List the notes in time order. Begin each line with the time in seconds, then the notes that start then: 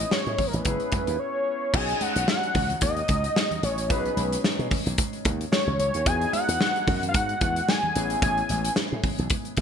Already playing: B3 C#4 E4 G#4 D#5
0.11 C#5, muted slap bass stroke, snare
0.26 A2, closed hi-hat
0.38 kick, open hi-hat, muted conga, high conga, low conga
0.47 A#4
0.53 A1 B4, closed hi-hat, low conga
0.64 F#1 B3 C#4 E4 G#4, kick, closed hi-hat, muted conga, high conga
0.80 closed hi-hat
0.92 F#2, kick, closed hi-hat, muted conga, high conga
1.07 D#2, closed hi-hat
1.20 C#5
1.73 B1 C#4 D#4 F#4 G#4 G#5, kick, crash
1.89 closed hi-hat
2.01 F#5, closed hi-hat, muted conga, high conga
2.16 B1, closed hi-hat
2.28 F#5, snare, muted conga
2.43 closed hi-hat
2.55 C#2, kick, open hi-hat, muted conga, high conga, low conga
2.69 closed hi-hat, low conga
2.81 D#2 D#5, kick, closed hi-hat, muted conga, high conga
2.97 closed hi-hat
3.08 C#2, kick, closed hi-hat, high conga
3.24 closed hi-hat
3.36 snare, muted conga
3.51 closed hi-hat, low conga
3.63 A1 C#5, closed hi-hat, muted conga
3.78 closed hi-hat
3.89 B1 C#4 D#4 F#4 G#4 B4, kick, closed hi-hat, muted conga
4.05 closed hi-hat
4.17 B1, closed hi-hat, high conga
4.32 closed hi-hat
4.44 muted slap bass stroke, snare, muted conga
4.59 B2, closed hi-hat
4.71 kick, open hi-hat, high conga, low conga
4.86 B1, closed hi-hat, low conga
4.98 kick, closed hi-hat, high conga
5.13 closed hi-hat
5.25 D#2, kick, closed hi-hat, muted conga, high conga
5.41 closed hi-hat
5.52 C#5, snare, muted conga
5.67 C#2, low conga
5.79 C#2 C#5, closed hi-hat, muted conga
5.94 D#2, closed hi-hat
6.05 E2 B3 D#4 F#4 G#4 G#5, kick, closed hi-hat
6.22 closed hi-hat
6.33 F#5, closed hi-hat, muted conga, high conga
6.48 E2, closed hi-hat
6.61 snare
6.76 closed hi-hat
6.87 F#2, kick, open hi-hat, high conga, low conga
7.02 closed hi-hat, low conga
7.09 F5
7.14 G#2 F#5, kick, closed hi-hat, muted conga, high conga
7.29 closed hi-hat
7.41 E2, kick, closed hi-hat, high conga
7.56 closed hi-hat
7.69 G#5, snare
7.83 low conga
7.95 A1 B3 C#4 E4 G#4, closed hi-hat, muted conga
8.10 closed hi-hat
8.22 A1 G#5, kick, closed hi-hat, muted conga
8.38 closed hi-hat
8.49 A1, closed hi-hat, high conga
8.65 closed hi-hat
8.76 muted slap bass stroke, snare
8.92 A2
9.03 kick, open hi-hat, high conga, low conga
9.19 B1, closed hi-hat, low conga
9.30 kick, closed hi-hat, muted conga, high conga
9.45 closed hi-hat
9.57 A1, kick, closed hi-hat